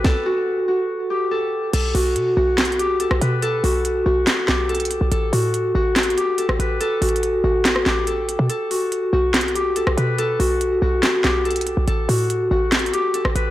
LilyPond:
<<
  \new Staff \with { instrumentName = "Harp" } { \time 4/4 \key g \major \tempo 4 = 142 a'8 fis'4 fis'4 g'8 a'4 | a'8 fis'4 fis'4 g'8 a'8 b'8 | a'8 fis'4 fis'4 g'8 a'4 | a'8 fis'4 fis'4 g'8 a'8 b'8 |
a'8 fis'4 fis'4 g'8 a'4 | a'8 fis'4 fis'4 g'8 a'8 b'8 | a'8 fis'4 fis'4 g'8 a'4 | a'8 fis'4 fis'4 g'8 a'8 b'8 | }
  \new Staff \with { instrumentName = "808-style bass" } { \clef bass \time 4/4 \key g \major r1 | b,,8 b,,8 b,8 b,,4.~ b,,16 b,,16 b,8~ | b,8 b,,4 b,,8 r8 b,,4~ b,,16 b,,16 | a,,8 a,4 a,,4 r8. a,,16 a,,8 |
r8 a,,4 a,,4 a,,4~ a,,16 b,16 | r4. b,,4.~ b,,16 b,,16 b,8~ | b,8 b,,4 b,,8 r8 b,,4~ b,,16 b,,16 | a,,8 a,4 a,,4 r8. a,,16 a,,8 | }
  \new DrumStaff \with { instrumentName = "Drums" } \drummode { \time 4/4 <bd sn>4 r4 r4 r4 | <cymc hh>8 hho8 hh4 \tuplet 3/2 { <hc hh sn>16 hh16 hh16 hh16 r16 r16 } hh16 ss16 hh8 | hh8 hho8 hh4 <hc hh sn>8 <hc sn>8 hh32 hh32 hh32 hh32 hh8 | hh8 hho8 hh4 \tuplet 3/2 { <hc hh sn>16 hh16 hh16 hh16 r16 r16 } hh16 ss16 hh8 |
\tuplet 3/2 { hh16 r16 r16 <hh hho>16 hh16 hh16 } hh4 <hc hh sn>16 ss16 <hc sn>8 hh8 hh8 | hh8 hho8 hh4 \tuplet 3/2 { <hc hh sn>16 hh16 hh16 hh16 r16 r16 } hh16 ss16 hh8 | hh8 hho8 hh4 <hc hh sn>8 <hc sn>8 hh32 hh32 hh32 hh32 hh8 | hh8 hho8 hh4 \tuplet 3/2 { <hc hh sn>16 hh16 hh16 hh16 r16 r16 } hh16 ss16 hh8 | }
>>